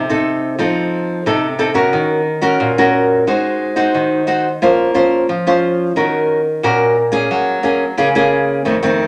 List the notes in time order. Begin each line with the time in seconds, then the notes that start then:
Already playing: C3
0.10 C4 D#4 A4
0.59 F3 C4 D#4 A4
1.26 C3 C4 D#4 A4
1.59 C4 D#4 A4
1.74 C#4 F#4 A#4
1.93 D#3
2.41 C#4 F#4 A#4
2.60 A#2
2.78 C#4 F#4 A#4
3.27 G#3 D#4 F#4 C5
3.76 D#4 F#4 C5
3.94 D#3
4.27 D#4 F#4 C5
4.62 A#3 C#4 F4 C5
4.94 C#4 F4 C5
5.29 F3
5.47 C#4 F4 C5
5.96 D#3 C#4 F#4 A#4
6.63 A#2 C#4 F#4 A#4
7.12 A#3 C#4 G#4
7.31 F#3
7.63 A#3 C#4 G#4
7.97 C#3 A#3 C#4 G#4
8.15 A#3 C#4 G#4
8.65 F2 D#3 A3 C4
8.83 D#3 A3 C4